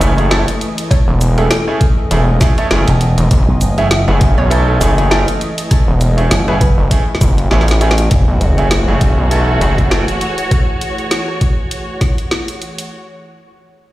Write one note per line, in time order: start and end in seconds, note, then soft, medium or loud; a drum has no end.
0.00 0.45 F#1 loud
0.00 8.07 E3 medium
0.00 8.07 A3 medium
0.00 0.12 A3 loud
0.00 0.12 C#4 medium
0.00 0.12 E4 medium
0.00 0.12 G#4 loud
0.00 8.10 D#5 medium
0.00 closed hi-hat medium
0.00 shaker medium
0.18 0.29 A3 medium
0.18 0.29 C#4 medium
0.18 0.29 E4 medium
0.18 0.29 G#4 medium
0.18 closed hi-hat soft
0.31 0.42 A3 loud
0.31 0.42 C#4 medium
0.31 0.42 E4 medium
0.31 0.42 A4 loud
0.31 snare loud
0.48 closed hi-hat medium
0.61 closed hi-hat medium
0.78 closed hi-hat medium
0.91 1.15 C#5 medium
0.91 kick loud
0.91 cross-stick medium
0.91 closed hi-hat medium
1.08 1.49 E1 loud
1.21 closed hi-hat medium
1.21 shaker medium
1.38 1.52 A3 medium
1.38 1.51 C#4 medium
1.38 1.52 E4 medium
1.38 1.51 G#4 medium
1.38 1.46 A4 medium
1.38 closed hi-hat soft
1.51 1.62 A4 medium
1.51 snare loud
1.51 closed hi-hat medium
1.68 1.81 A3 medium
1.68 1.81 C#4 medium
1.68 1.81 E4 medium
1.68 1.81 G#4 loud
1.68 cross-stick soft
1.81 kick loud
1.81 closed hi-hat medium
2.11 2.39 E1 medium
2.11 2.22 A3 medium
2.11 2.22 C#4 medium
2.11 2.22 E4 medium
2.11 2.22 G#4 medium
2.11 closed hi-hat medium
2.41 2.52 A3 loud
2.41 2.52 C#4 medium
2.41 2.52 E4 medium
2.41 2.52 G#4 loud
2.41 kick loud
2.41 snare medium
2.41 closed hi-hat medium
2.41 shaker medium
2.58 2.66 A3 medium
2.58 2.66 C#4 medium
2.58 2.66 E4 medium
2.58 2.66 A4 loud
2.58 closed hi-hat soft
2.71 2.85 F#1 loud
2.71 2.88 A3 medium
2.71 2.88 C#4 medium
2.71 2.88 E4 medium
2.71 2.88 G#4 loud
2.71 snare loud
2.88 3.15 E1 loud
2.88 closed hi-hat medium
3.01 closed hi-hat medium
3.18 3.29 E1 loud
3.18 closed hi-hat medium
3.31 3.45 F#1 loud
3.31 kick loud
3.31 closed hi-hat medium
3.48 3.59 B1 loud
3.61 4.05 F#1 loud
3.61 closed hi-hat medium
3.61 shaker medium
3.78 3.86 A3 loud
3.78 3.86 C#4 medium
3.78 3.86 E4 medium
3.78 3.86 G#4 loud
3.78 4.01 E5 medium
3.78 closed hi-hat soft
3.91 snare loud
3.91 closed hi-hat medium
4.08 4.35 F#1 loud
4.08 4.48 A3 loud
4.08 4.48 C#4 medium
4.08 4.48 E4 medium
4.08 4.48 G#4 loud
4.08 4.31 F#5 medium
4.21 kick loud
4.21 closed hi-hat medium
4.38 4.79 B1 medium
4.38 4.61 C#5 medium
4.50 4.78 A3 loud
4.50 4.78 C#4 medium
4.50 4.78 E4 medium
4.50 4.78 A4 loud
4.50 closed hi-hat medium
4.68 cross-stick soft
4.81 5.25 F#1 loud
4.81 4.92 A3 loud
4.81 4.92 C#4 medium
4.81 4.92 E4 medium
4.81 4.92 G#4 loud
4.81 closed hi-hat medium
4.81 shaker medium
4.98 5.09 A3 medium
4.98 5.09 C#4 medium
4.98 5.09 E4 medium
4.98 5.09 G#4 medium
4.98 closed hi-hat soft
5.11 5.22 A3 medium
5.11 5.22 C#4 medium
5.11 5.22 E4 medium
5.11 5.22 A4 loud
5.11 snare loud
5.28 closed hi-hat medium
5.41 closed hi-hat medium
5.58 closed hi-hat medium
5.71 kick loud
5.71 cross-stick medium
5.71 closed hi-hat medium
5.88 6.29 E1 loud
6.01 closed hi-hat medium
6.01 shaker medium
6.17 6.31 A3 medium
6.17 6.31 C#4 medium
6.17 6.31 E4 medium
6.17 6.31 G#4 medium
6.17 closed hi-hat soft
6.31 6.75 F#1 loud
6.31 snare loud
6.31 closed hi-hat medium
6.48 6.62 A3 medium
6.48 6.62 C#4 medium
6.48 6.62 E4 medium
6.48 6.62 G#4 loud
6.48 6.56 B4 medium
6.48 cross-stick soft
6.61 6.72 B4 medium
6.61 kick loud
6.61 closed hi-hat medium
6.78 6.89 F#1 loud
6.91 7.02 A3 medium
6.91 7.02 C#4 medium
6.91 7.02 E4 medium
6.91 7.02 G#4 medium
6.91 kick medium
6.91 closed hi-hat medium
7.15 snare medium
7.21 7.49 F#1 loud
7.21 kick loud
7.21 closed hi-hat medium
7.21 shaker medium
7.38 closed hi-hat soft
7.51 8.09 A1 loud
7.51 7.62 A3 loud
7.51 7.62 C#4 medium
7.51 7.62 E4 medium
7.51 7.62 G#4 loud
7.51 snare medium
7.61 snare medium
7.68 snare medium
7.68 closed hi-hat medium
7.81 7.92 A3 medium
7.81 7.92 C#4 medium
7.81 7.92 E4 medium
7.81 7.92 G#4 loud
7.81 closed hi-hat medium
7.91 snare loud
7.98 closed hi-hat medium
8.11 8.26 F#1 loud
8.11 12.87 E3 medium
8.11 12.87 A3 medium
8.11 12.91 F#4 medium
8.11 12.87 G#4 medium
8.11 kick loud
8.11 closed hi-hat medium
8.11 sub drop medium
8.28 8.39 B1 loud
8.41 8.85 F#1 loud
8.41 closed hi-hat medium
8.58 8.66 A3 medium
8.58 8.66 C#4 medium
8.58 8.66 E4 medium
8.58 8.66 G#4 loud
8.58 closed hi-hat soft
8.71 snare loud
8.71 closed hi-hat medium
8.87 9.15 F#1 loud
8.87 9.28 A3 medium
8.87 9.28 C#4 medium
8.87 9.28 E4 medium
8.87 9.28 G#4 loud
8.87 12.91 C#5 medium
9.01 kick loud
9.01 closed hi-hat medium
9.18 9.59 B1 medium
9.31 9.58 A3 medium
9.31 9.58 C#4 medium
9.31 9.58 E4 medium
9.31 9.58 A4 loud
9.31 closed hi-hat medium
9.48 cross-stick soft
9.61 10.05 F#1 loud
9.61 9.72 A3 medium
9.61 9.72 C#4 medium
9.61 9.72 E4 medium
9.61 9.72 G#4 loud
9.61 closed hi-hat medium
9.78 9.89 A3 medium
9.78 9.89 C#4 medium
9.78 9.89 E4 medium
9.78 9.89 G#4 medium
9.78 kick medium
9.78 closed hi-hat soft
9.91 10.02 A3 medium
9.91 10.02 C#4 medium
9.91 10.02 E4 medium
9.91 10.02 A4 loud
9.91 snare loud
10.08 closed hi-hat medium
10.21 closed hi-hat medium
10.38 closed hi-hat medium
10.51 kick loud
10.51 cross-stick medium
10.51 closed hi-hat medium
10.81 closed hi-hat medium
10.98 closed hi-hat soft
11.11 snare loud
11.11 closed hi-hat medium
11.28 cross-stick soft
11.41 kick loud
11.41 closed hi-hat medium
11.71 closed hi-hat medium
12.01 kick loud
12.01 snare medium
12.01 closed hi-hat medium
12.18 closed hi-hat soft
12.31 snare loud
12.48 closed hi-hat medium
12.62 closed hi-hat medium
12.78 closed hi-hat medium